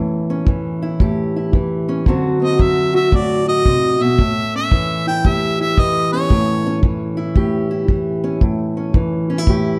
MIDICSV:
0, 0, Header, 1, 4, 480
1, 0, Start_track
1, 0, Tempo, 530035
1, 1866, Time_signature, 4, 2, 24, 8
1, 8869, End_track
2, 0, Start_track
2, 0, Title_t, "Harmonica"
2, 0, Program_c, 0, 22
2, 2194, Note_on_c, 0, 75, 76
2, 2369, Note_on_c, 0, 76, 85
2, 2382, Note_off_c, 0, 75, 0
2, 2671, Note_off_c, 0, 76, 0
2, 2676, Note_on_c, 0, 76, 90
2, 2854, Note_on_c, 0, 74, 85
2, 2867, Note_off_c, 0, 76, 0
2, 3151, Note_off_c, 0, 74, 0
2, 3157, Note_on_c, 0, 75, 104
2, 3648, Note_on_c, 0, 76, 87
2, 3662, Note_off_c, 0, 75, 0
2, 4115, Note_off_c, 0, 76, 0
2, 4128, Note_on_c, 0, 76, 95
2, 4562, Note_off_c, 0, 76, 0
2, 4597, Note_on_c, 0, 79, 103
2, 4773, Note_on_c, 0, 76, 98
2, 4786, Note_off_c, 0, 79, 0
2, 5073, Note_off_c, 0, 76, 0
2, 5083, Note_on_c, 0, 76, 100
2, 5245, Note_on_c, 0, 75, 96
2, 5259, Note_off_c, 0, 76, 0
2, 5542, Note_off_c, 0, 75, 0
2, 5548, Note_on_c, 0, 73, 88
2, 6156, Note_off_c, 0, 73, 0
2, 8869, End_track
3, 0, Start_track
3, 0, Title_t, "Steel-string acoustic guitar"
3, 0, Program_c, 1, 25
3, 0, Note_on_c, 1, 45, 66
3, 0, Note_on_c, 1, 52, 64
3, 271, Note_on_c, 1, 61, 54
3, 418, Note_off_c, 1, 52, 0
3, 432, Note_on_c, 1, 52, 60
3, 746, Note_on_c, 1, 64, 62
3, 895, Note_off_c, 1, 45, 0
3, 906, Note_on_c, 1, 45, 62
3, 918, Note_on_c, 1, 67, 65
3, 1222, Note_off_c, 1, 64, 0
3, 1235, Note_on_c, 1, 64, 52
3, 1390, Note_off_c, 1, 52, 0
3, 1400, Note_on_c, 1, 52, 64
3, 1697, Note_off_c, 1, 61, 0
3, 1707, Note_on_c, 1, 61, 60
3, 1847, Note_off_c, 1, 45, 0
3, 1851, Note_off_c, 1, 61, 0
3, 1854, Note_off_c, 1, 67, 0
3, 1856, Note_off_c, 1, 64, 0
3, 1874, Note_off_c, 1, 52, 0
3, 1879, Note_on_c, 1, 50, 68
3, 1884, Note_on_c, 1, 54, 58
3, 1889, Note_on_c, 1, 60, 56
3, 1893, Note_on_c, 1, 66, 65
3, 2180, Note_off_c, 1, 60, 0
3, 2190, Note_on_c, 1, 60, 54
3, 2334, Note_off_c, 1, 54, 0
3, 2345, Note_on_c, 1, 54, 65
3, 2652, Note_off_c, 1, 66, 0
3, 2662, Note_on_c, 1, 66, 67
3, 2818, Note_off_c, 1, 66, 0
3, 2825, Note_on_c, 1, 45, 63
3, 2831, Note_on_c, 1, 66, 63
3, 3133, Note_off_c, 1, 66, 0
3, 3144, Note_on_c, 1, 66, 62
3, 3314, Note_off_c, 1, 50, 0
3, 3317, Note_on_c, 1, 48, 60
3, 3625, Note_off_c, 1, 48, 0
3, 3632, Note_on_c, 1, 47, 58
3, 3768, Note_off_c, 1, 45, 0
3, 3768, Note_off_c, 1, 54, 0
3, 3775, Note_off_c, 1, 60, 0
3, 3791, Note_off_c, 1, 66, 0
3, 3791, Note_on_c, 1, 45, 70
3, 3795, Note_off_c, 1, 47, 0
3, 4124, Note_on_c, 1, 61, 55
3, 4273, Note_on_c, 1, 52, 58
3, 4589, Note_on_c, 1, 64, 60
3, 4749, Note_off_c, 1, 45, 0
3, 4753, Note_on_c, 1, 45, 59
3, 4759, Note_on_c, 1, 67, 69
3, 5071, Note_off_c, 1, 64, 0
3, 5075, Note_on_c, 1, 64, 55
3, 5235, Note_off_c, 1, 52, 0
3, 5239, Note_on_c, 1, 52, 62
3, 5547, Note_off_c, 1, 61, 0
3, 5550, Note_on_c, 1, 61, 62
3, 5702, Note_off_c, 1, 45, 0
3, 5706, Note_on_c, 1, 45, 72
3, 5733, Note_off_c, 1, 67, 0
3, 6033, Note_off_c, 1, 61, 0
3, 6036, Note_on_c, 1, 61, 58
3, 6189, Note_off_c, 1, 52, 0
3, 6193, Note_on_c, 1, 52, 63
3, 6489, Note_off_c, 1, 64, 0
3, 6493, Note_on_c, 1, 64, 62
3, 6664, Note_off_c, 1, 45, 0
3, 6668, Note_on_c, 1, 45, 64
3, 6669, Note_on_c, 1, 67, 65
3, 6976, Note_off_c, 1, 64, 0
3, 6980, Note_on_c, 1, 64, 53
3, 7135, Note_off_c, 1, 52, 0
3, 7138, Note_on_c, 1, 52, 64
3, 7448, Note_off_c, 1, 61, 0
3, 7459, Note_on_c, 1, 61, 60
3, 7605, Note_off_c, 1, 45, 0
3, 7605, Note_off_c, 1, 67, 0
3, 7606, Note_off_c, 1, 61, 0
3, 7624, Note_on_c, 1, 45, 69
3, 7941, Note_on_c, 1, 61, 51
3, 8102, Note_off_c, 1, 52, 0
3, 8105, Note_on_c, 1, 52, 63
3, 8409, Note_off_c, 1, 61, 0
3, 8416, Note_off_c, 1, 64, 0
3, 8420, Note_on_c, 1, 61, 61
3, 8496, Note_off_c, 1, 61, 0
3, 8496, Note_on_c, 1, 64, 50
3, 8582, Note_off_c, 1, 45, 0
3, 8593, Note_on_c, 1, 45, 62
3, 8598, Note_on_c, 1, 67, 60
3, 8869, Note_off_c, 1, 45, 0
3, 8869, Note_off_c, 1, 52, 0
3, 8869, Note_off_c, 1, 64, 0
3, 8869, Note_off_c, 1, 67, 0
3, 8869, End_track
4, 0, Start_track
4, 0, Title_t, "Drums"
4, 422, Note_on_c, 9, 36, 70
4, 512, Note_off_c, 9, 36, 0
4, 906, Note_on_c, 9, 36, 64
4, 997, Note_off_c, 9, 36, 0
4, 1388, Note_on_c, 9, 36, 58
4, 1478, Note_off_c, 9, 36, 0
4, 1868, Note_on_c, 9, 36, 63
4, 1958, Note_off_c, 9, 36, 0
4, 2349, Note_on_c, 9, 36, 65
4, 2440, Note_off_c, 9, 36, 0
4, 2828, Note_on_c, 9, 36, 68
4, 2918, Note_off_c, 9, 36, 0
4, 3310, Note_on_c, 9, 36, 59
4, 3401, Note_off_c, 9, 36, 0
4, 3791, Note_on_c, 9, 36, 62
4, 3882, Note_off_c, 9, 36, 0
4, 4270, Note_on_c, 9, 36, 67
4, 4361, Note_off_c, 9, 36, 0
4, 4752, Note_on_c, 9, 36, 67
4, 4843, Note_off_c, 9, 36, 0
4, 5231, Note_on_c, 9, 36, 65
4, 5321, Note_off_c, 9, 36, 0
4, 5709, Note_on_c, 9, 36, 65
4, 5799, Note_off_c, 9, 36, 0
4, 6184, Note_on_c, 9, 36, 68
4, 6275, Note_off_c, 9, 36, 0
4, 6662, Note_on_c, 9, 36, 62
4, 6752, Note_off_c, 9, 36, 0
4, 7140, Note_on_c, 9, 36, 58
4, 7230, Note_off_c, 9, 36, 0
4, 7618, Note_on_c, 9, 36, 62
4, 7709, Note_off_c, 9, 36, 0
4, 8098, Note_on_c, 9, 36, 68
4, 8188, Note_off_c, 9, 36, 0
4, 8576, Note_on_c, 9, 36, 63
4, 8667, Note_off_c, 9, 36, 0
4, 8869, End_track
0, 0, End_of_file